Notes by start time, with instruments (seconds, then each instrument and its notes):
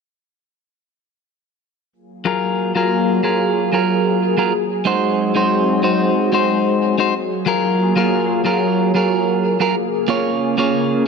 1.93 analog synth pad F#3 A#3 F4 G#4
2.25 clean electric guitar F#3 F4 G#4 A#4
2.75 clean electric guitar F#3 F4 G#4 A#4
3.23 clean electric guitar F#3 F4 G#4 A#4
3.72 clean electric guitar F#3 F4 G#4 A#4
4.37 clean electric guitar F#3 F4 G#4 A#4
4.55 analog synth pad F#3 C4
4.85 clean electric guitar G#3 D#4 F#4 C5
5.35 clean electric guitar G#3 D#4 F#4 C5
5.83 clean electric guitar G#3 D#4 F#4 C5
6.32 clean electric guitar G#3 D#4 F#4 C5
6.98 clean electric guitar G#3 D#4 F#4 C5
7.15 analog synth pad F#3 A#3 F4 G#4
7.46 clean electric guitar F#3 F4 G#4 A#4
7.96 clean electric guitar F#3 F4 G#4 A#4
8.45 clean electric guitar F#3 F4 G#4 A#4
8.94 clean electric guitar F#3 F4 G#4 A#4
9.60 clean electric guitar F#3 F4 G#4 A#4
9.76 analog synth pad C#3
10.08 clean electric guitar A#3 F4 G#4 C#5
10.58 clean electric guitar A#3 F4 G#4 C#5